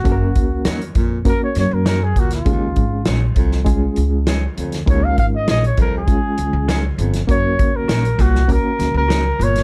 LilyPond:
<<
  \new Staff \with { instrumentName = "Trumpet" } { \time 4/4 \key des \major \tempo 4 = 100 ges'4~ ges'16 r8. bes'16 des''16 des''16 bes'16 bes'16 aes'16 ges'16 f'16~ | f'4~ f'16 r2 r8. | des''16 f''16 f''16 ees''16 ees''16 des''16 bes'16 aes'4. r8. | des''8. bes'8. ges'8 bes'8. bes'8. des''8 | }
  \new Staff \with { instrumentName = "Clean electric guitar" } { \time 4/4 \key des \major r4 <ges' bes' des''>16 r4. r16 <ges' bes' des''>16 r8. | r4 <f' aes' des''>16 r4. r16 <f' aes' des''>16 r8. | r4 <f' aes' des''>16 r4. r16 <f' aes' des''>16 r8. | r4 <ges' bes' des''>16 r4. r16 <ges' bes' des''>16 r8. | }
  \new Staff \with { instrumentName = "Reed electric piano" } { \time 4/4 \key des \major <bes des' ges' a' bes'>4~ <bes des' ges' a' bes'>16 r8. <bes des' ges' bes'>4~ <bes des' ges' bes'>16 r8. | <aes des' f' aes'>4~ <aes des' f' aes'>16 r8. <aes des' f' aes'>4~ <aes des' f' aes'>16 r8. | <aes des' f' bes'>4~ <aes des' f' bes'>16 r8. <aes des' f' aes'>4~ <aes des' f' aes'>16 r8. | <bes des' ges' bes'>4~ <bes des' ges' bes'>16 r8. <bes des' ges' bes'>4~ <bes des' ges' bes'>16 r8. | }
  \new Staff \with { instrumentName = "Baritone saxophone" } { \clef bass \time 4/4 \key des \major ges,8 r4 bes,8 r4. bes,8 | ees,8 r4 f,8 r4. f,8 | ees,8 r4 f,8 r4. f,8 | ges,8 r4 bes,8 r4. bes,8 | }
  \new Staff \with { instrumentName = "Upright bass" } { \clef bass \time 4/4 \key des \major ges,,8 des,8 ees,8 f,8. r16 ges,16 ges,8. d,8 | des,8 aes,,8 bes,,8 c,4 des,4 d,8 | des,8 aes,,8 bes,,8 c,8. r16 des,16 des,8. g,,8 | ges,,8 des,8 bes,,8 c,8. r16 des,16 des,8. g,,8 | }
  \new DrumStaff \with { instrumentName = "Drums" } \drummode { \time 4/4 <hh bd>8 <hh bd>8 <hh sn>16 hh16 <hh bd>8 <hh bd>8 <hh sn>8 <hh sn>8 <hh bd>16 <hh sn>16 | <hh bd>8 <hh bd>8 <hh sn>8 <hh bd>16 sn16 <hh bd>8 hh8 <hh sn>8 hh16 <hh sn>16 | <hh bd>8 <hh bd>8 <hh sn>16 hh16 <hh bd>8 <hh bd>8 hh8 <hh sn>8 hh16 <hh sn>16 | <hh bd>8 <hh bd>8 <hh sn>16 hh16 <hh bd>16 sn16 <hh bd>8 <hh sn>8 <hh sn>8 hh16 <hh sn>16 | }
>>